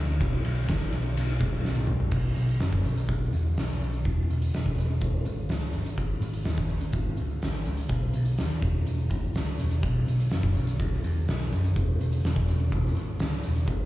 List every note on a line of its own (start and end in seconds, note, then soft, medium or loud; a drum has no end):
0.00 0.21 D2 medium
0.20 0.42 B1 medium
0.20 kick loud
0.20 ride loud
0.45 0.66 B1 medium
0.45 ride medium
0.68 0.90 G#1 medium
0.68 kick medium
0.68 snare loud
0.68 ride loud
0.92 1.14 B1 medium
0.92 ride medium
1.17 1.39 B1 medium
1.17 ride loud
1.41 1.62 B1 medium
1.41 kick medium
1.41 ride medium
1.65 2.08 B1 medium
1.65 snare medium
1.76 high tom medium
1.87 mid tom medium
2.00 floor tom medium
2.11 2.34 B1 medium
2.11 kick loud
2.11 crash loud
2.36 2.58 B1 medium
2.36 closed hi-hat medium
2.49 closed hi-hat medium
2.60 2.82 F#2 medium
2.60 snare loud
2.60 closed hi-hat medium
2.73 kick medium
2.84 3.06 B1 medium
2.84 closed hi-hat medium
2.97 closed hi-hat medium
3.09 3.31 B1 medium
3.09 kick loud
3.09 closed hi-hat medium
3.33 3.55 E2 medium
3.33 closed hi-hat medium
3.57 3.79 B1 medium
3.57 snare loud
3.57 closed hi-hat medium
3.81 4.03 B1 medium
3.81 closed hi-hat medium
3.93 closed hi-hat medium
4.05 4.27 E1 medium
4.05 kick loud
4.05 closed hi-hat medium
4.29 4.51 E1 medium
4.29 closed hi-hat medium
4.42 closed hi-hat medium
4.54 4.75 E1 medium
4.54 snare loud
4.54 closed hi-hat medium
4.66 kick medium
4.77 4.99 E1 medium
4.77 closed hi-hat medium
5.01 5.24 E1 medium
5.01 kick loud
5.01 closed hi-hat medium
5.25 5.47 G#1 medium
5.25 closed hi-hat medium
5.49 5.71 C#2 medium
5.49 snare loud
5.49 closed hi-hat medium
5.73 5.98 G1 medium
5.73 closed hi-hat medium
5.86 closed hi-hat medium
5.97 6.20 G#1 medium
5.97 kick loud
5.97 closed hi-hat medium
6.22 6.44 G#1 medium
6.22 closed hi-hat medium
6.34 closed hi-hat medium
6.45 6.68 D#2 medium
6.45 snare loud
6.45 closed hi-hat medium
6.58 kick medium
6.69 6.92 G#1 medium
6.69 closed hi-hat medium
6.81 closed hi-hat medium
6.93 7.16 G#1 medium
6.93 kick loud
6.93 closed hi-hat medium
7.17 7.41 C#2 medium
7.17 closed hi-hat medium
7.42 7.65 G#1 medium
7.42 snare medium
7.42 closed hi-hat medium
7.65 7.88 C#2 medium
7.65 closed hi-hat medium
7.77 closed hi-hat medium
7.89 8.12 B1 medium
7.89 kick loud
7.89 closed hi-hat medium
8.13 8.36 B1 medium
8.13 closed hi-hat medium
8.25 closed hi-hat medium
8.38 8.61 D#2 medium
8.38 snare medium
8.38 closed hi-hat medium
8.62 8.85 E1 medium
8.62 kick medium
8.62 closed hi-hat medium
8.87 9.09 E1 medium
8.87 closed hi-hat medium
9.11 9.33 G#1 medium
9.11 kick medium
9.11 closed hi-hat medium
9.35 9.57 C#2 medium
9.35 snare loud
9.35 closed hi-hat medium
9.59 9.85 E1 medium
9.59 closed hi-hat medium
9.71 closed hi-hat medium
9.83 10.05 B1 medium
9.83 kick loud
9.83 closed hi-hat medium
10.07 10.29 B1 medium
10.07 closed hi-hat medium
10.20 closed hi-hat medium
10.31 10.53 F#2 medium
10.31 snare loud
10.31 closed hi-hat medium
10.43 kick medium
10.55 10.77 B1 medium
10.55 closed hi-hat medium
10.67 closed hi-hat medium
10.80 11.01 B1 medium
10.80 kick loud
10.80 closed hi-hat medium
10.93 snare soft
11.04 11.26 E2 medium
11.04 closed hi-hat medium
11.28 11.49 B1 medium
11.28 snare loud
11.28 closed hi-hat medium
11.53 11.74 F#2 medium
11.53 closed hi-hat medium
11.64 closed hi-hat medium
11.76 11.98 E1 medium
11.76 kick loud
11.76 closed hi-hat medium
12.00 12.21 E1 medium
12.00 closed hi-hat medium
12.12 closed hi-hat medium
12.23 12.45 E1 medium
12.23 snare loud
12.23 closed hi-hat medium
12.36 kick medium
12.48 12.70 E1 medium
12.48 closed hi-hat medium
12.72 12.93 E1 medium
12.72 kick loud
12.72 closed hi-hat medium
12.86 snare soft
12.97 13.18 G#1 medium
12.97 closed hi-hat medium
13.20 13.42 C#2 medium
13.20 snare loud
13.20 closed hi-hat medium
13.43 13.66 E1 medium
13.43 closed hi-hat medium
13.56 closed hi-hat medium
13.67 13.86 G#1 loud
13.67 kick loud
13.67 closed hi-hat medium